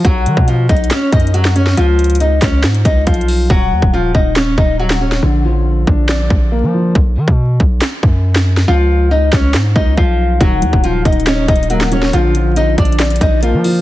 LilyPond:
<<
  \new Staff \with { instrumentName = "Nylon-string guitar" } { \time 4/4 \key ees \minor \tempo 4 = 139 <fis fis'>4 <f f'>8 <dis' dis''>8 <des' des''>8 <dis' dis''>8 <fis fis'>8 <des' des''>8 | <f f'>4 <ees' ees''>8 <des' des''>8 r8 <ees' ees''>8 <f f'>4 | <ges ges'>4 <f f'>8 <ees' ees''>8 <des' des''>8 <ees' ees''>8 <ges ges'>8 <des' des''>8 | r1 |
r1 | <f f'>4 <ees' ees''>8 <des' des''>8 r8 <ees' ees''>8 <f f'>4 | <ges ges'>4 <f f'>8 <ees' ees''>8 <des' des''>8 <ees' ees''>8 <ges ges'>8 <des' des''>8 | <f f'>4 <ees' ees''>8 <d' d''>8 r8 <ees' ees''>8 <f f'>4 | }
  \new Staff \with { instrumentName = "Grand piano" } { \clef bass \time 4/4 \key ees \minor r1 | r1 | r1 | d8 f4 d'8 d''4 bes8 f8 |
r1 | r1 | ees8 ges4 ees'8 ees''4 bes8 ges8 | d8 f4 d'8 d''4 bes8 f8 | }
  \new Staff \with { instrumentName = "808-style bass" } { \clef bass \time 4/4 \key ees \minor b,,8 dis16 b,8. b,,8 r8 fis,4. | des,4. des,8 aes,8 des,8 ces,4 | ees,,8 ees,16 ees,,8. ees,,4 ees,,4. | bes,,4. bes,,4 bes,,8. f8. |
b,,8 dis16 b,8. b,,8 r8 fis,4. | des,4. des,8 aes,8 des,8 ces,4 | ees,,8 ees,16 ees,,8. ees,,4 ees,,4. | bes,,4. bes,,4 bes,,8. f8. | }
  \new DrumStaff \with { instrumentName = "Drums" } \drummode { \time 4/4 <hh bd>8 hh16 bd16 \tuplet 3/2 { hh16 r16 r16 <hh bd>16 hh16 hh16 <hc hh sn>16 r16 r16 <hh bd>16 hh16 hh16 } hh16 <hc sn>16 hh16 sn16 | hh8 hh32 hh32 hh32 hh32 hh8 <hc hh bd sn>8 <hc hh sn>16 hh16 <hh bd>8 \tuplet 3/2 { <hh bd>16 hh16 hh16 hho16 r16 r16 } | bd8. bd16 r8 bd8 <hc sn>8 bd8 r16 <hc sn>8 sn16 | r4 r8 bd8 <hc sn>8 bd8 r4 |
bd8. bd16 r8 bd8 <hc sn>8 bd8 r16 <hc sn>8 sn16 | r4 r8 <hc bd sn>8 <hc sn>8 bd8 bd4 | <hh bd>8 hh16 bd16 \tuplet 3/2 { hh16 r16 r16 <hh bd>16 hh16 hh16 <hc hh sn>16 r16 r16 <hh bd>16 hh16 hh16 } hh16 <hc sn>16 hh16 sn16 | hh8 hh8 \tuplet 3/2 { hh16 r16 r16 <hh bd>16 hh16 hh16 } <hc hh sn>32 hh32 hh32 hh32 <hh bd>8 hh8 hho8 | }
>>